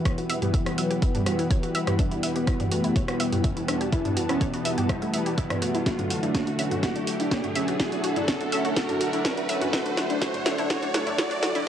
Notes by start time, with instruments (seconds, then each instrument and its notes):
Already playing: synth drone E2 B2, analog synth pad E3 B3 F#4 G4, ambient pad E4 B4, riser
0.05 analog polysynth E3 G3 B3, analog synth lead B3, synth arpeggio sound C#5, kick, cross-stick, closed hi-hat
0.18 analog synth bass E1, synth arpeggio sound F#4, closed hi-hat
0.30 analog synth bass E1, synth arpeggio sound E5, open hi-hat
0.42 analog synth bass E1, analog polysynth E3 G3 B3, analog synth lead G3, synth arpeggio sound G4, closed hi-hat, mid tom
0.54 synth arpeggio sound E5, kick, closed hi-hat
0.66 analog synth bass E1, synth arpeggio sound E4, cross-stick, closed hi-hat
0.78 analog synth bass E1, analog synth lead F#3, synth arpeggio sound E5, open hi-hat
0.90 analog synth bass E1, synth arpeggio sound G4, closed hi-hat
1.02 synth arpeggio sound E4, kick, closed hi-hat
1.15 analog synth bass E1, analog synth lead G3, synth arpeggio sound D4, closed hi-hat, mid tom
1.26 analog synth bass E1, analog polysynth E3 G3 B3, synth arpeggio sound F#4, cross-stick, open hi-hat
1.39 analog synth bass E1, synth arpeggio sound E4, open hi-hat
1.51 synth arpeggio sound C#5, kick, closed hi-hat
1.63 analog synth bass E1, synth arpeggio sound F#4, closed hi-hat
1.75 analog synth bass E1, analog synth lead B3, synth arpeggio sound E5, open hi-hat
1.87 synth arpeggio sound G4, cross-stick, closed hi-hat, mid tom
1.99 analog polysynth E3 G3 B3, analog synth lead D4, synth arpeggio sound E5, kick, closed hi-hat
2.11 synth arpeggio sound E4, closed hi-hat
2.23 synth arpeggio sound E5, open hi-hat
2.36 analog polysynth E3 G3 B3, analog synth lead B3, synth arpeggio sound G4, closed hi-hat
2.47 synth arpeggio sound E4, kick, cross-stick, closed hi-hat
2.60 synth arpeggio sound D4, closed hi-hat, mid tom
2.71 analog synth bass E1, analog synth lead A3, synth arpeggio sound F#4, open hi-hat
2.76 ambient pad A5
2.84 synth arpeggio sound E4, closed hi-hat
2.96 synth arpeggio sound C#5, kick, closed hi-hat
3.08 analog synth lead B3, synth arpeggio sound F#4, cross-stick, closed hi-hat
3.20 analog synth bass E1, analog polysynth E3 G3 B3, synth arpeggio sound E5, open hi-hat
3.32 synth arpeggio sound G4, mid tom, open hi-hat
3.44 synth arpeggio sound E5, kick, closed hi-hat
3.57 analog synth bass E1, synth arpeggio sound E4, closed hi-hat
3.68 analog synth lead D4, synth arpeggio sound E5, cross-stick, open hi-hat
3.81 analog synth bass E1, synth arpeggio sound G4, closed hi-hat
3.92 analog polysynth E3 G3 B3, analog synth lead E4, synth arpeggio sound E4, kick, closed hi-hat
4.05 synth arpeggio sound D4, closed hi-hat, mid tom
4.17 synth arpeggio sound F#4, open hi-hat
4.29 analog polysynth E3 G3 B3, analog synth lead C#4, synth arpeggio sound E4, cross-stick, closed hi-hat
4.41 synth arpeggio sound C#5, kick, closed hi-hat
4.54 synth arpeggio sound F#4, closed hi-hat
4.65 analog synth bass E1, analog synth lead B3, synth arpeggio sound E5, open hi-hat
4.78 synth arpeggio sound G4, closed hi-hat, mid tom
4.89 synth arpeggio sound E5, kick, cross-stick, closed hi-hat
5.02 analog synth bass E2, analog synth lead A3, synth arpeggio sound E4, closed hi-hat
5.13 analog polysynth E3 G3 B3, synth arpeggio sound E5, open hi-hat
5.26 analog synth bass E1, synth arpeggio sound G4, open hi-hat
5.38 synth arpeggio sound E4, kick, closed hi-hat
5.50 analog synth bass E1, synth arpeggio sound D4, cross-stick, closed hi-hat, mid tom
5.62 analog synth lead A3, synth arpeggio sound F#4, open hi-hat
5.74 synth arpeggio sound E4, closed hi-hat
5.86 analog synth pad D3 A3 E4, analog polysynth D3 F#3 A3, ambient pad D4, synth arpeggio sound E4, analog synth lead F#4, kick, snare, closed hi-hat
5.99 synth arpeggio sound D4, closed hi-hat, mid tom
6.09 analog synth bass E1, synth arpeggio sound F#4, ambient pad A4, open hi-hat
6.23 analog polysynth D3 F#3 A3, analog synth lead D4, synth arpeggio sound E4, closed hi-hat
6.35 synth arpeggio sound C#5, ambient pad E5, kick, snare, closed hi-hat
6.47 synth arpeggio sound F#4, closed hi-hat
6.59 analog synth lead C#4, synth arpeggio sound E5, open hi-hat
6.71 synth arpeggio sound F#4, closed hi-hat, mid tom
6.77 ambient pad F#5
6.83 analog polysynth D3 F#3 A3, synth arpeggio sound E4, analog synth lead F#4, kick, snare, closed hi-hat
6.96 synth arpeggio sound D4, closed hi-hat
7.07 synth arpeggio sound F#4, open hi-hat
7.20 analog polysynth D3 F#3 A3, analog synth lead D4, synth arpeggio sound E4, open hi-hat
7.31 synth arpeggio sound C#5, kick, snare, closed hi-hat
7.44 synth arpeggio sound F#4, closed hi-hat, mid tom
7.55 analog synth bass E1, analog synth lead C#4, synth arpeggio sound E5, open hi-hat
7.68 synth arpeggio sound F#4, closed hi-hat
7.80 analog polysynth D3 F#3 A3, synth arpeggio sound E4, analog synth lead F#4, kick, snare, closed hi-hat
7.92 synth arpeggio sound D4, closed hi-hat
8.04 synth arpeggio sound F#4, open hi-hat
8.16 analog polysynth D3 F#3 A3, analog synth lead D4, synth arpeggio sound E4, closed hi-hat, mid tom
8.28 synth arpeggio sound C#5, kick, snare, closed hi-hat
8.41 synth arpeggio sound F#4, closed hi-hat
8.52 analog synth lead C#4, synth arpeggio sound E5, open hi-hat
8.65 synth arpeggio sound F#4, closed hi-hat
8.76 analog polysynth D3 F#3 A3, synth arpeggio sound E4, analog synth lead F#4, kick, snare, closed hi-hat
8.89 synth arpeggio sound D4, closed hi-hat, mid tom
9.01 synth arpeggio sound F#4, open hi-hat
9.13 analog polysynth D3 F#3 A3, analog synth lead D4, synth arpeggio sound E4, open hi-hat
9.25 synth arpeggio sound C#5, kick, snare, closed hi-hat
9.37 synth arpeggio sound F#4, closed hi-hat
9.49 analog synth lead C#4, synth arpeggio sound E5, open hi-hat
9.61 synth arpeggio sound F#4, closed hi-hat, mid tom
9.73 analog polysynth D3 F#3 A3, analog synth pad D4, synth arpeggio sound E4, analog synth lead F#4, kick, snare, closed hi-hat
9.86 synth arpeggio sound D4, closed hi-hat
9.97 synth arpeggio sound F#4, snare, open hi-hat
10.10 analog polysynth D3 F#3 A3, analog synth lead D4, synth arpeggio sound E4, closed hi-hat
10.22 analog polysynth D3 F#3 A3, synth arpeggio sound E4, analog synth lead F#4, kick, snare, closed hi-hat
10.34 synth arpeggio sound D4, closed hi-hat, mid tom
10.46 synth arpeggio sound F#4, snare, open hi-hat
10.58 analog polysynth D3 F#3 A3, analog synth lead D4, synth arpeggio sound E4, closed hi-hat
10.70 analog polysynth D3 F#3 A3, synth arpeggio sound E4, analog synth lead F#4, kick, snare, closed hi-hat
10.83 synth arpeggio sound D4, closed hi-hat
10.94 synth arpeggio sound F#4, snare, open hi-hat
11.07 analog polysynth D3 F#3 A3, analog synth lead D4, synth arpeggio sound E4, mid tom, open hi-hat
11.18 analog polysynth F#3 A3, synth arpeggio sound E4, analog synth lead F#4, kick, snare, closed hi-hat
11.31 synth arpeggio sound D4, closed hi-hat
11.43 synth arpeggio sound F#4, snare, open hi-hat
11.55 analog polysynth D3 F#3 A3, analog synth lead D4, synth arpeggio sound E4, closed hi-hat